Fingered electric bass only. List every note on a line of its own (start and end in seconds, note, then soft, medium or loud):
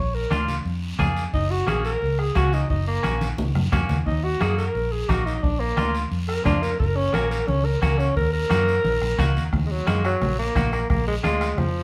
0.00 0.25 A#1 medium
0.31 0.58 D2 medium
0.65 0.93 F2 medium
0.99 1.27 F2 medium
1.34 1.61 F#1 loud
1.68 1.95 A#1 medium
2.02 2.30 C#2 medium
2.36 2.63 C#2 medium
2.70 2.98 F#1 loud
3.05 3.32 A#1 medium
3.39 3.52 C#2 medium
3.56 3.71 F#2 medium
3.73 3.88 F2 medium
3.90 4.05 D#2 medium
4.07 4.34 D#2 loud
4.41 4.68 F#2 medium
4.75 5.02 A#1 medium
5.09 5.37 A#1 medium
5.43 5.71 A#1 loud
5.78 6.05 D2 medium
6.11 6.39 F2 medium
6.46 6.73 F2 medium
6.80 7.07 F#1 loud
7.14 7.41 A#1 medium
7.49 7.76 C#2 medium
7.82 8.10 C#2 medium
8.16 8.44 D#2 loud
8.51 8.78 F#2 medium
8.85 8.98 A#1 medium
9.02 9.17 A#1 medium
9.19 9.34 C#2 medium
9.36 9.52 D#2 medium
9.53 9.80 D#2 loud
9.87 10.14 F#2 medium
10.21 10.49 A#1 medium
10.56 10.83 A#1 medium
10.90 11.17 A#1 loud
11.25 11.52 D2 medium
11.58 11.83 F2 medium